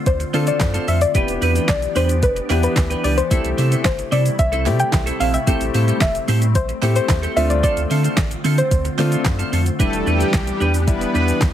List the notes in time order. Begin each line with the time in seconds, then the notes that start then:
Already playing: D3 A3 C4 F4
0.06 D2 C5, muted clean electric guitar stroke, kick, closed hi-hat, shaker
0.20 muted clean electric guitar stroke, closed hi-hat, shaker
0.33 D3 C4 D4 F4 A4, open hi-hat, shaker
0.47 C4 F4 A4 D5, closed hi-hat, shaker
0.60 F#2, kick, snare, clap, closed hi-hat, shaker
0.74 C4 F4 A4, closed hi-hat, shaker
0.87 F2 C4 F4 A4 E5, open hi-hat, shaker
1.01 D5, muted clean electric guitar stroke, closed hi-hat, shaker
1.14 E1 E3 B3 D4 E4 G4 B4, kick, closed hi-hat, shaker
1.28 E1, closed hi-hat, shaker
1.41 E2 D4 G4 B4, open hi-hat, shaker
1.55 D4 G4 B4, closed hi-hat, shaker
1.68 B1 D5, kick, snare, clap, closed hi-hat, shaker
1.82 muted clean electric guitar stroke, closed hi-hat, shaker
1.95 E2 D4 G4 B4 C5, open hi-hat, shaker
2.09 muted clean electric guitar stroke, closed hi-hat, shaker
2.23 E1 B4, muted clean electric guitar stroke, kick, closed hi-hat, shaker
2.36 muted clean electric guitar stroke, closed hi-hat, shaker
2.50 E2 B3 D4 E4 G4 B4, clap, open hi-hat, shaker
2.63 D4 G4 B4, closed hi-hat, shaker
2.76 D2, muted clean electric guitar stroke, kick, snare, clap, closed hi-hat, shaker
2.90 D4 G4 B4, closed hi-hat, shaker
3.04 C#2 D4 G4 B4 D5, open hi-hat, shaker
3.17 C5, muted clean electric guitar stroke, closed hi-hat, shaker
3.31 C2 C3 G3 A3 C4 E4 G4 A4, kick, closed hi-hat, shaker
3.45 C2, closed hi-hat, shaker
3.58 C3 C4 E4 A4, open hi-hat, shaker
3.71 C4 E4 A4, closed hi-hat, shaker
3.84 G1 C5, kick, snare, clap, closed hi-hat, shaker
3.98 muted clean electric guitar stroke, closed hi-hat, shaker
4.12 C3 C4 E4 A4 D5, open hi-hat, shaker
4.25 muted clean electric guitar stroke, closed hi-hat, shaker
4.39 C2 E5, muted clean electric guitar stroke, kick, closed hi-hat, shaker
4.52 C4 E4 A4, closed hi-hat, shaker
4.66 C3 A3 C4 E4 G4, muted clean electric guitar stroke, clap, open hi-hat, shaker
4.79 G5, muted clean electric guitar stroke, closed hi-hat, shaker
4.92 B1, muted clean electric guitar stroke, kick, snare, clap, closed hi-hat, shaker
5.06 C4 E4 A4, closed hi-hat, shaker
5.20 A#1 C4 E4 A4 F5, open hi-hat, shaker
5.34 E5, muted clean electric guitar stroke, closed hi-hat, shaker
5.47 A1 A3 C4 E4 G4 A4, kick, closed hi-hat, shaker
5.61 A1, closed hi-hat, shaker
5.74 A2 C4 G4 A4, open hi-hat, shaker
5.87 C4 G4 A4, closed hi-hat, shaker
6.00 E1 E5, kick, snare, clap, closed hi-hat, shaker
6.15 muted clean electric guitar stroke, closed hi-hat, shaker
6.28 A2 C4 G4 A4, open hi-hat, shaker
6.42 muted clean electric guitar stroke, closed hi-hat, shaker
6.55 A1 C5, muted clean electric guitar stroke, kick, closed hi-hat, shaker
6.69 muted clean electric guitar stroke, closed hi-hat, shaker
6.82 A2 A3 C4 E4 G4 A4, clap, open hi-hat, shaker
6.96 C4 G4 A4 C5, closed hi-hat, shaker
7.08 D#2, muted clean electric guitar stroke, kick, snare, clap, closed hi-hat, shaker
7.23 C4 G4 A4, closed hi-hat, shaker
7.36 D2 D3 A3 C4 D4 F4 A4 E5, open hi-hat, shaker
7.50 D5, muted clean electric guitar stroke, closed hi-hat, shaker
7.63 C4 F4 A4 D5, kick, closed hi-hat, shaker
7.77 D2, closed hi-hat, shaker
7.90 D3 C4 F4 A4, open hi-hat, shaker
8.04 C4 F4 A4, closed hi-hat, shaker
8.17 A1, kick, snare, clap, closed hi-hat, shaker
8.31 muted clean electric guitar stroke, closed hi-hat, shaker
8.44 D3 C4 F4 A4, open hi-hat, shaker
8.58 C5, muted clean electric guitar stroke, closed hi-hat, shaker
8.71 D2, muted clean electric guitar stroke, kick, closed hi-hat, shaker
8.85 muted clean electric guitar stroke, closed hi-hat, shaker
8.98 D3 A3 C4 D4 F4 A4, clap, open hi-hat, shaker
9.12 C4 F4 A4, closed hi-hat, shaker
9.24 F#2, kick, snare, clap, closed hi-hat, shaker
9.39 C4 F4 A4, closed hi-hat, shaker
9.52 F2 C4 F4 A4, open hi-hat, shaker
9.66 muted clean electric guitar stroke, closed hi-hat, shaker
9.79 E1 E3 G3 A3 B3 D4 E4 G4 A4 B4, kick, closed hi-hat, shaker
9.93 E1, closed hi-hat, shaker
10.06 E2 G3 D4 G4 B4, shaker
10.20 D4 G4 B4, closed hi-hat, shaker
10.33 B1, kick, snare, clap, closed hi-hat, shaker
10.47 muted clean electric guitar stroke, closed hi-hat, shaker
10.60 E2 D4 G4 B4, shaker
10.74 muted clean electric guitar stroke, closed hi-hat, shaker
10.87 E1 G3 B3 D4 E4 B4, muted clean electric guitar stroke, kick, closed hi-hat, shaker
11.01 muted clean electric guitar stroke, closed hi-hat, shaker
11.14 E2 B3 D4 G4 B4, shaker
11.28 D4 G4 B4, closed hi-hat, shaker
11.41 D2, kick, snare, clap, closed hi-hat, shaker